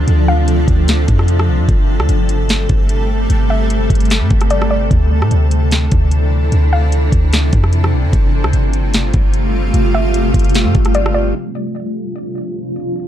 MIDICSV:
0, 0, Header, 1, 5, 480
1, 0, Start_track
1, 0, Key_signature, -1, "minor"
1, 0, Tempo, 402685
1, 91, Time_signature, 4, 2, 24, 8
1, 15590, End_track
2, 0, Start_track
2, 0, Title_t, "Synth pluck"
2, 0, Program_c, 0, 84
2, 338, Note_on_c, 0, 77, 86
2, 1011, Note_off_c, 0, 77, 0
2, 4174, Note_on_c, 0, 76, 84
2, 5324, Note_off_c, 0, 76, 0
2, 5370, Note_on_c, 0, 74, 81
2, 5594, Note_off_c, 0, 74, 0
2, 5609, Note_on_c, 0, 74, 77
2, 5838, Note_off_c, 0, 74, 0
2, 8018, Note_on_c, 0, 77, 87
2, 8691, Note_off_c, 0, 77, 0
2, 11854, Note_on_c, 0, 76, 88
2, 13005, Note_off_c, 0, 76, 0
2, 13049, Note_on_c, 0, 74, 82
2, 13269, Note_off_c, 0, 74, 0
2, 13283, Note_on_c, 0, 74, 79
2, 13515, Note_off_c, 0, 74, 0
2, 15590, End_track
3, 0, Start_track
3, 0, Title_t, "Ambient pad"
3, 0, Program_c, 1, 92
3, 0, Note_on_c, 1, 48, 82
3, 0, Note_on_c, 1, 53, 74
3, 0, Note_on_c, 1, 62, 77
3, 0, Note_on_c, 1, 69, 88
3, 1973, Note_off_c, 1, 48, 0
3, 1973, Note_off_c, 1, 53, 0
3, 1973, Note_off_c, 1, 62, 0
3, 2010, Note_on_c, 1, 48, 84
3, 2010, Note_on_c, 1, 55, 79
3, 2011, Note_on_c, 1, 57, 77
3, 5812, Note_off_c, 1, 55, 0
3, 5812, Note_off_c, 1, 57, 0
3, 5849, Note_on_c, 1, 62, 76
3, 5850, Note_on_c, 1, 52, 78
3, 9643, Note_off_c, 1, 69, 0
3, 9651, Note_off_c, 1, 62, 0
3, 9652, Note_off_c, 1, 52, 0
3, 9694, Note_on_c, 1, 65, 91
3, 9695, Note_on_c, 1, 57, 74
3, 9696, Note_on_c, 1, 55, 74
3, 13482, Note_off_c, 1, 48, 0
3, 13494, Note_off_c, 1, 57, 0
3, 13494, Note_off_c, 1, 65, 0
3, 13495, Note_off_c, 1, 55, 0
3, 13531, Note_on_c, 1, 62, 70
3, 13531, Note_on_c, 1, 65, 89
3, 13532, Note_on_c, 1, 53, 74
3, 13533, Note_on_c, 1, 48, 79
3, 15590, Note_off_c, 1, 48, 0
3, 15590, Note_off_c, 1, 53, 0
3, 15590, Note_off_c, 1, 62, 0
3, 15590, Note_off_c, 1, 65, 0
3, 15590, End_track
4, 0, Start_track
4, 0, Title_t, "808-style bass"
4, 0, Program_c, 2, 38
4, 89, Note_on_c, 2, 38, 115
4, 781, Note_off_c, 2, 38, 0
4, 807, Note_on_c, 2, 38, 105
4, 1270, Note_off_c, 2, 38, 0
4, 1293, Note_on_c, 2, 41, 102
4, 1771, Note_on_c, 2, 36, 101
4, 1788, Note_off_c, 2, 41, 0
4, 1890, Note_on_c, 2, 41, 103
4, 1908, Note_off_c, 2, 36, 0
4, 2004, Note_off_c, 2, 41, 0
4, 2010, Note_on_c, 2, 31, 108
4, 2369, Note_on_c, 2, 38, 101
4, 2387, Note_off_c, 2, 31, 0
4, 2484, Note_off_c, 2, 38, 0
4, 2491, Note_on_c, 2, 31, 106
4, 3182, Note_off_c, 2, 31, 0
4, 3214, Note_on_c, 2, 31, 106
4, 3904, Note_off_c, 2, 31, 0
4, 3932, Note_on_c, 2, 31, 120
4, 4623, Note_off_c, 2, 31, 0
4, 4650, Note_on_c, 2, 31, 102
4, 5012, Note_on_c, 2, 43, 97
4, 5029, Note_off_c, 2, 31, 0
4, 5125, Note_off_c, 2, 43, 0
4, 5135, Note_on_c, 2, 31, 103
4, 5824, Note_off_c, 2, 31, 0
4, 5851, Note_on_c, 2, 38, 109
4, 6212, Note_on_c, 2, 45, 100
4, 6229, Note_off_c, 2, 38, 0
4, 6325, Note_off_c, 2, 45, 0
4, 6331, Note_on_c, 2, 38, 103
4, 7022, Note_off_c, 2, 38, 0
4, 7056, Note_on_c, 2, 38, 105
4, 7744, Note_off_c, 2, 38, 0
4, 7772, Note_on_c, 2, 38, 118
4, 8463, Note_off_c, 2, 38, 0
4, 8490, Note_on_c, 2, 38, 105
4, 8951, Note_off_c, 2, 38, 0
4, 8976, Note_on_c, 2, 41, 107
4, 9453, Note_on_c, 2, 36, 103
4, 9471, Note_off_c, 2, 41, 0
4, 9574, Note_on_c, 2, 41, 101
4, 9592, Note_off_c, 2, 36, 0
4, 9686, Note_off_c, 2, 41, 0
4, 9692, Note_on_c, 2, 31, 106
4, 10053, Note_on_c, 2, 38, 95
4, 10070, Note_off_c, 2, 31, 0
4, 10166, Note_off_c, 2, 38, 0
4, 10172, Note_on_c, 2, 31, 102
4, 10863, Note_off_c, 2, 31, 0
4, 10894, Note_on_c, 2, 31, 102
4, 11584, Note_off_c, 2, 31, 0
4, 11609, Note_on_c, 2, 31, 116
4, 12301, Note_off_c, 2, 31, 0
4, 12328, Note_on_c, 2, 31, 100
4, 12690, Note_on_c, 2, 43, 98
4, 12708, Note_off_c, 2, 31, 0
4, 12804, Note_off_c, 2, 43, 0
4, 12814, Note_on_c, 2, 31, 105
4, 13504, Note_off_c, 2, 31, 0
4, 15590, End_track
5, 0, Start_track
5, 0, Title_t, "Drums"
5, 91, Note_on_c, 9, 42, 81
5, 210, Note_off_c, 9, 42, 0
5, 570, Note_on_c, 9, 42, 75
5, 689, Note_off_c, 9, 42, 0
5, 808, Note_on_c, 9, 36, 97
5, 811, Note_on_c, 9, 42, 78
5, 927, Note_off_c, 9, 36, 0
5, 930, Note_off_c, 9, 42, 0
5, 1050, Note_on_c, 9, 42, 77
5, 1060, Note_on_c, 9, 38, 115
5, 1169, Note_off_c, 9, 42, 0
5, 1179, Note_off_c, 9, 38, 0
5, 1289, Note_on_c, 9, 42, 68
5, 1294, Note_on_c, 9, 36, 105
5, 1408, Note_off_c, 9, 42, 0
5, 1413, Note_off_c, 9, 36, 0
5, 1420, Note_on_c, 9, 37, 90
5, 1527, Note_on_c, 9, 42, 75
5, 1539, Note_off_c, 9, 37, 0
5, 1646, Note_off_c, 9, 42, 0
5, 1662, Note_on_c, 9, 37, 98
5, 1781, Note_off_c, 9, 37, 0
5, 2010, Note_on_c, 9, 36, 119
5, 2010, Note_on_c, 9, 42, 82
5, 2129, Note_off_c, 9, 36, 0
5, 2129, Note_off_c, 9, 42, 0
5, 2382, Note_on_c, 9, 37, 100
5, 2490, Note_on_c, 9, 42, 73
5, 2501, Note_off_c, 9, 37, 0
5, 2609, Note_off_c, 9, 42, 0
5, 2730, Note_on_c, 9, 42, 79
5, 2850, Note_off_c, 9, 42, 0
5, 2971, Note_on_c, 9, 42, 75
5, 2981, Note_on_c, 9, 38, 116
5, 3090, Note_off_c, 9, 42, 0
5, 3101, Note_off_c, 9, 38, 0
5, 3210, Note_on_c, 9, 42, 66
5, 3214, Note_on_c, 9, 36, 101
5, 3330, Note_off_c, 9, 42, 0
5, 3333, Note_off_c, 9, 36, 0
5, 3447, Note_on_c, 9, 42, 76
5, 3567, Note_off_c, 9, 42, 0
5, 3933, Note_on_c, 9, 42, 82
5, 4052, Note_off_c, 9, 42, 0
5, 4413, Note_on_c, 9, 42, 76
5, 4532, Note_off_c, 9, 42, 0
5, 4650, Note_on_c, 9, 36, 94
5, 4653, Note_on_c, 9, 42, 78
5, 4712, Note_off_c, 9, 42, 0
5, 4712, Note_on_c, 9, 42, 66
5, 4769, Note_off_c, 9, 36, 0
5, 4773, Note_off_c, 9, 42, 0
5, 4773, Note_on_c, 9, 42, 55
5, 4832, Note_off_c, 9, 42, 0
5, 4832, Note_on_c, 9, 42, 48
5, 4891, Note_off_c, 9, 42, 0
5, 4891, Note_on_c, 9, 42, 74
5, 4902, Note_on_c, 9, 38, 116
5, 5011, Note_off_c, 9, 42, 0
5, 5021, Note_off_c, 9, 38, 0
5, 5131, Note_on_c, 9, 42, 42
5, 5135, Note_on_c, 9, 36, 104
5, 5250, Note_off_c, 9, 42, 0
5, 5252, Note_on_c, 9, 42, 66
5, 5254, Note_off_c, 9, 36, 0
5, 5262, Note_on_c, 9, 37, 90
5, 5369, Note_off_c, 9, 42, 0
5, 5369, Note_on_c, 9, 42, 79
5, 5382, Note_off_c, 9, 37, 0
5, 5488, Note_off_c, 9, 42, 0
5, 5503, Note_on_c, 9, 37, 100
5, 5623, Note_off_c, 9, 37, 0
5, 5851, Note_on_c, 9, 36, 120
5, 5852, Note_on_c, 9, 42, 78
5, 5971, Note_off_c, 9, 36, 0
5, 5971, Note_off_c, 9, 42, 0
5, 6223, Note_on_c, 9, 37, 97
5, 6331, Note_on_c, 9, 42, 76
5, 6343, Note_off_c, 9, 37, 0
5, 6450, Note_off_c, 9, 42, 0
5, 6572, Note_on_c, 9, 42, 75
5, 6691, Note_off_c, 9, 42, 0
5, 6812, Note_on_c, 9, 42, 80
5, 6822, Note_on_c, 9, 38, 112
5, 6931, Note_off_c, 9, 42, 0
5, 6941, Note_off_c, 9, 38, 0
5, 7051, Note_on_c, 9, 42, 71
5, 7055, Note_on_c, 9, 36, 105
5, 7170, Note_off_c, 9, 42, 0
5, 7175, Note_off_c, 9, 36, 0
5, 7288, Note_on_c, 9, 42, 72
5, 7408, Note_off_c, 9, 42, 0
5, 7773, Note_on_c, 9, 42, 75
5, 7892, Note_off_c, 9, 42, 0
5, 8253, Note_on_c, 9, 42, 78
5, 8372, Note_off_c, 9, 42, 0
5, 8490, Note_on_c, 9, 36, 93
5, 8493, Note_on_c, 9, 42, 78
5, 8609, Note_off_c, 9, 36, 0
5, 8612, Note_off_c, 9, 42, 0
5, 8733, Note_on_c, 9, 42, 78
5, 8744, Note_on_c, 9, 38, 113
5, 8852, Note_off_c, 9, 42, 0
5, 8863, Note_off_c, 9, 38, 0
5, 8972, Note_on_c, 9, 42, 67
5, 8976, Note_on_c, 9, 36, 108
5, 9091, Note_off_c, 9, 42, 0
5, 9095, Note_off_c, 9, 36, 0
5, 9103, Note_on_c, 9, 37, 89
5, 9210, Note_on_c, 9, 42, 74
5, 9222, Note_off_c, 9, 37, 0
5, 9329, Note_off_c, 9, 42, 0
5, 9346, Note_on_c, 9, 37, 97
5, 9465, Note_off_c, 9, 37, 0
5, 9692, Note_on_c, 9, 36, 123
5, 9693, Note_on_c, 9, 42, 80
5, 9811, Note_off_c, 9, 36, 0
5, 9813, Note_off_c, 9, 42, 0
5, 10063, Note_on_c, 9, 37, 107
5, 10172, Note_on_c, 9, 42, 75
5, 10182, Note_off_c, 9, 37, 0
5, 10291, Note_off_c, 9, 42, 0
5, 10412, Note_on_c, 9, 42, 76
5, 10531, Note_off_c, 9, 42, 0
5, 10651, Note_on_c, 9, 42, 75
5, 10662, Note_on_c, 9, 38, 116
5, 10771, Note_off_c, 9, 42, 0
5, 10781, Note_off_c, 9, 38, 0
5, 10890, Note_on_c, 9, 42, 65
5, 10895, Note_on_c, 9, 36, 103
5, 11009, Note_off_c, 9, 42, 0
5, 11014, Note_off_c, 9, 36, 0
5, 11128, Note_on_c, 9, 42, 72
5, 11247, Note_off_c, 9, 42, 0
5, 11611, Note_on_c, 9, 42, 79
5, 11730, Note_off_c, 9, 42, 0
5, 12089, Note_on_c, 9, 42, 74
5, 12209, Note_off_c, 9, 42, 0
5, 12328, Note_on_c, 9, 36, 97
5, 12330, Note_on_c, 9, 42, 79
5, 12390, Note_off_c, 9, 42, 0
5, 12390, Note_on_c, 9, 42, 69
5, 12447, Note_off_c, 9, 36, 0
5, 12450, Note_off_c, 9, 42, 0
5, 12450, Note_on_c, 9, 42, 55
5, 12509, Note_off_c, 9, 42, 0
5, 12509, Note_on_c, 9, 42, 45
5, 12570, Note_off_c, 9, 42, 0
5, 12570, Note_on_c, 9, 42, 75
5, 12580, Note_on_c, 9, 38, 116
5, 12689, Note_off_c, 9, 42, 0
5, 12700, Note_off_c, 9, 38, 0
5, 12810, Note_on_c, 9, 42, 42
5, 12814, Note_on_c, 9, 36, 108
5, 12929, Note_off_c, 9, 42, 0
5, 12930, Note_on_c, 9, 42, 72
5, 12934, Note_off_c, 9, 36, 0
5, 12941, Note_on_c, 9, 37, 90
5, 13047, Note_off_c, 9, 42, 0
5, 13047, Note_on_c, 9, 42, 72
5, 13060, Note_off_c, 9, 37, 0
5, 13166, Note_off_c, 9, 42, 0
5, 13182, Note_on_c, 9, 37, 96
5, 13301, Note_off_c, 9, 37, 0
5, 15590, End_track
0, 0, End_of_file